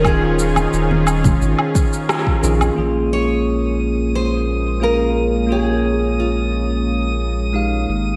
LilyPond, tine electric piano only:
\new Staff \with { instrumentName = "Tine electric piano" } { \time 4/4 \key bes \dorian \tempo 4 = 88 <ees des' f' aes'>2. r8 <ees des' f' aes'>8 | <bes des' f' aes'>2. <bes f' aes' f''>4 | <bes f' aes' des''>2. <aes ees' g' f''>4 | }